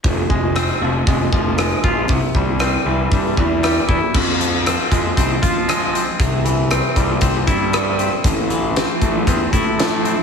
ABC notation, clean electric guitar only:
X:1
M:4/4
L:1/8
Q:1/4=117
K:Cphr
V:1 name="Clean electric guitar" clef=bass
F,, A, C F, A, F, A, F | C, G, C =E, G, E, G, =E | F,, F, C A, C F A, C | C, =E, C G, C =E G, C |
=A,, =E, C =A, C =E A, C |]